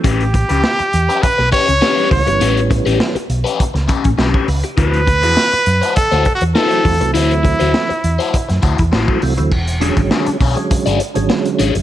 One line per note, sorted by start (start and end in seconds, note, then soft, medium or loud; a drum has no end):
0.04 0.43 A1 loud
0.04 0.21 C#4 medium
0.04 1.24 G4 loud
0.04 0.22 G4 medium
0.04 0.22 B4 medium
0.04 kick loud
0.04 closed hi-hat medium
0.20 closed hi-hat soft
0.34 muted overdriven electric guitar stroke soft
0.34 kick medium
0.34 closed hi-hat medium
0.49 0.62 C#2 medium
0.49 0.62 C#4 soft
0.49 0.62 G4 soft
0.49 0.61 B4 medium
0.49 closed hi-hat medium
0.63 muted overdriven electric guitar stroke soft
0.63 snare loud
0.79 muted overdriven electric guitar stroke soft
0.79 muted fingered electric bass stroke soft
0.79 closed hi-hat soft
0.93 1.07 E2 medium
0.93 closed hi-hat medium
1.09 1.25 C#4 medium
1.09 1.25 G4 medium
1.09 1.24 B4 medium
1.09 closed hi-hat soft
1.22 1.51 B4 loud
1.22 muted fingered electric bass stroke soft
1.22 kick loud
1.22 closed hi-hat loud
1.38 1.51 B1 medium
1.38 muted overdriven electric guitar stroke medium
1.38 snare soft
1.52 1.69 C#4 medium
1.52 1.68 G4 medium
1.52 1.67 B4 loud
1.52 2.07 C#5 loud
1.52 kick loud
1.52 closed hi-hat medium
1.68 1.80 C#2 medium
1.68 muted overdriven electric guitar stroke soft
1.68 closed hi-hat medium
1.81 2.09 C#4 medium
1.81 2.10 G4 medium
1.81 2.10 B4 medium
1.81 snare loud
1.97 2.08 E3 medium
1.97 2.08 G3 medium
1.97 2.08 B3 medium
1.97 2.08 C#4 medium
1.97 closed hi-hat soft
2.10 2.25 C#2 medium
2.10 2.23 E3 medium
2.10 2.23 G3 medium
2.10 2.23 B3 medium
2.10 2.23 C#4 medium
2.10 2.67 C#5 loud
2.10 muted overdriven electric guitar stroke soft
2.10 kick medium
2.10 open hi-hat medium
2.26 2.39 G1 loud
2.26 3.16 E3 medium
2.26 3.16 G3 medium
2.26 3.17 B3 medium
2.26 3.17 C#4 medium
2.26 muted overdriven electric guitar stroke medium
2.26 closed hi-hat medium
2.41 2.79 A1 medium
2.41 2.58 C#4 medium
2.41 2.58 G4 medium
2.41 2.59 B4 medium
2.41 closed hi-hat medium
2.57 closed hi-hat soft
2.70 muted overdriven electric guitar stroke soft
2.70 kick medium
2.70 closed hi-hat medium
2.86 2.98 A1 medium
2.86 2.98 C#4 medium
2.86 2.98 G4 medium
2.86 2.98 B4 medium
2.86 closed hi-hat medium
2.99 muted overdriven electric guitar stroke soft
2.99 snare loud
3.15 muted fingered electric bass stroke soft
3.15 muted overdriven electric guitar stroke soft
3.15 closed hi-hat soft
3.30 3.43 B1 medium
3.30 closed hi-hat medium
3.44 3.61 C#4 medium
3.44 3.61 G4 medium
3.44 3.60 B4 loud
3.44 closed hi-hat soft
3.60 muted fingered electric bass stroke soft
3.60 kick medium
3.60 closed hi-hat loud
3.74 3.87 C#2 medium
3.74 muted overdriven electric guitar stroke soft
3.74 snare soft
3.74 closed hi-hat soft
3.88 4.06 C#4 medium
3.88 4.04 G4 medium
3.88 4.03 B4 medium
3.88 kick loud
3.88 closed hi-hat medium
4.04 4.17 A1 medium
4.04 muted overdriven electric guitar stroke medium
4.04 kick loud
4.04 closed hi-hat medium
4.18 4.32 B1 loud
4.18 4.46 C#4 medium
4.18 4.46 G4 medium
4.18 4.47 B4 medium
4.18 snare loud
4.34 4.48 C#5 medium
4.34 kick medium
4.48 4.62 C#2 loud
4.48 4.63 B4 medium
4.48 muted overdriven electric guitar stroke soft
4.48 open hi-hat medium
4.64 4.92 G4 medium
4.64 muted overdriven electric guitar stroke soft
4.64 closed hi-hat soft
4.77 5.23 D2 loud
4.77 4.98 E4 medium
4.77 4.99 F#4 loud
4.77 5.92 B4 loud
4.77 4.99 C5 loud
4.77 kick loud
4.77 closed hi-hat medium
4.94 closed hi-hat soft
5.07 muted overdriven electric guitar stroke soft
5.07 kick medium
5.07 closed hi-hat medium
5.22 5.35 E2 medium
5.22 5.35 E4 medium
5.22 5.35 F#4 medium
5.22 5.35 C5 medium
5.22 closed hi-hat medium
5.36 muted overdriven electric guitar stroke soft
5.36 snare loud
5.52 muted fingered electric bass stroke soft
5.52 muted overdriven electric guitar stroke soft
5.52 closed hi-hat soft
5.66 5.80 F#2 medium
5.66 closed hi-hat medium
5.82 5.95 E4 medium
5.82 5.96 F#4 medium
5.82 5.96 C5 medium
5.82 closed hi-hat medium
5.96 6.33 A4 loud
5.96 muted overdriven electric guitar stroke soft
5.96 muted fingered electric bass stroke soft
5.96 kick loud
5.96 closed hi-hat loud
6.12 6.24 D2 medium
6.12 6.25 E4 medium
6.12 6.25 F#4 medium
6.12 6.26 C5 medium
6.12 snare soft
6.12 closed hi-hat soft
6.25 muted overdriven electric guitar stroke soft
6.25 kick medium
6.25 closed hi-hat medium
6.35 6.44 F#4 loud
6.41 6.54 E2 medium
6.41 muted overdriven electric guitar stroke medium
6.41 closed hi-hat medium
6.55 6.67 D#4 medium
6.55 6.67 F4 medium
6.55 7.11 A4 loud
6.55 6.68 B4 medium
6.55 snare loud
6.67 6.82 E3 medium
6.67 6.82 F#3 medium
6.67 6.83 E4 medium
6.67 6.83 F#4 medium
6.67 6.84 C5 medium
6.67 closed hi-hat soft
6.72 6.82 A3 medium
6.72 6.82 C4 medium
6.84 6.99 E2 loud
6.84 6.97 E3 medium
6.84 6.97 F#3 medium
6.84 6.97 A3 medium
6.84 6.97 C4 medium
6.84 muted overdriven electric guitar stroke soft
6.84 kick medium
6.84 open hi-hat medium
7.00 7.13 C2 medium
7.00 7.90 E3 medium
7.00 7.90 F#3 medium
7.00 7.91 A3 medium
7.00 7.07 B3 medium
7.00 muted overdriven electric guitar stroke soft
7.00 closed hi-hat medium
7.08 7.94 C4 medium
7.14 7.53 D2 medium
7.14 8.88 E4 loud
7.14 7.31 E4 medium
7.14 7.32 F#4 medium
7.14 7.32 C5 medium
7.14 closed hi-hat medium
7.31 closed hi-hat soft
7.44 muted overdriven electric guitar stroke soft
7.44 kick medium
7.44 closed hi-hat medium
7.59 7.73 D2 medium
7.59 7.73 E4 soft
7.59 7.72 F#4 medium
7.59 7.72 C5 medium
7.59 closed hi-hat medium
7.74 muted overdriven electric guitar stroke soft
7.74 snare loud
7.89 muted overdriven electric guitar stroke soft
7.89 muted fingered electric bass stroke soft
7.89 closed hi-hat soft
8.04 8.17 E2 medium
8.04 closed hi-hat medium
8.19 8.35 E4 medium
8.19 8.35 F#4 medium
8.19 8.34 C5 medium
8.19 closed hi-hat medium
8.34 kick loud
8.34 closed hi-hat medium
8.49 8.62 F#2 medium
8.49 muted overdriven electric guitar stroke soft
8.49 snare soft
8.49 closed hi-hat soft
8.62 8.77 D2 medium
8.62 8.80 E4 medium
8.62 8.78 F#4 loud
8.62 8.77 C5 loud
8.62 kick loud
8.62 closed hi-hat medium
8.78 8.91 E2 medium
8.78 muted overdriven electric guitar stroke medium
8.78 kick medium
8.78 closed hi-hat medium
8.92 9.06 A1 medium
8.92 9.20 E4 medium
8.92 9.20 F#4 medium
8.92 9.21 C5 medium
8.92 snare loud
9.08 9.18 E3 medium
9.08 9.19 F#3 medium
9.08 9.19 A3 medium
9.08 9.19 C4 loud
9.08 kick medium
9.21 9.36 C2 loud
9.21 9.34 E3 loud
9.21 9.34 F#3 medium
9.21 9.34 A3 medium
9.21 9.34 C4 loud
9.21 muted overdriven electric guitar stroke soft
9.21 open hi-hat medium
9.37 9.50 D2 medium
9.37 9.51 E3 medium
9.37 9.52 F#3 medium
9.37 9.52 A3 medium
9.37 9.52 C4 loud
9.37 muted overdriven electric guitar stroke medium
9.37 closed hi-hat soft
9.51 9.90 E1 medium
9.51 kick medium
9.51 crash medium
9.67 closed hi-hat medium
9.80 10.37 D3 medium
9.80 10.37 F#3 medium
9.80 10.37 G#3 medium
9.80 10.38 C#4 loud
9.80 9.98 D4 medium
9.80 9.99 G#4 medium
9.80 9.99 C#5 medium
9.80 closed hi-hat medium
9.97 10.09 G#1 medium
9.97 kick loud
9.97 closed hi-hat medium
10.11 10.28 D4 medium
10.11 10.27 G#4 medium
10.11 10.26 C#5 medium
10.11 snare loud
10.27 muted overdriven electric guitar stroke soft
10.27 muted fingered electric bass stroke soft
10.27 closed hi-hat medium
10.41 10.54 B1 medium
10.41 10.54 D4 medium
10.41 10.55 G#4 medium
10.41 10.55 C#5 medium
10.41 kick medium
10.41 open hi-hat medium
10.55 11.00 D3 medium
10.55 11.00 F#3 medium
10.55 11.00 G#3 medium
10.55 11.01 C#4 loud
10.55 muted overdriven electric guitar stroke soft
10.55 closed hi-hat soft
10.71 muted overdriven electric guitar stroke soft
10.71 muted fingered electric bass stroke soft
10.71 kick medium
10.71 closed hi-hat loud
10.86 10.98 G1 medium
10.86 10.99 D4 medium
10.86 10.99 G#4 medium
10.86 11.01 D5 medium
10.86 closed hi-hat medium
11.00 muted overdriven electric guitar stroke soft
11.00 closed hi-hat medium
11.14 11.28 G#1 loud
11.14 11.71 D3 loud
11.14 11.71 F#3 medium
11.14 11.71 G#3 medium
11.14 11.72 C#4 loud
11.14 muted overdriven electric guitar stroke soft
11.14 closed hi-hat medium
11.29 muted overdriven electric guitar stroke soft
11.29 snare loud
11.46 closed hi-hat medium
11.59 11.73 G#1 loud
11.59 11.72 D4 medium
11.59 11.73 G#4 medium
11.59 11.73 C#5 medium
11.59 closed hi-hat medium
11.75 11.82 F#1 loud
11.75 muted overdriven electric guitar stroke soft
11.75 closed hi-hat soft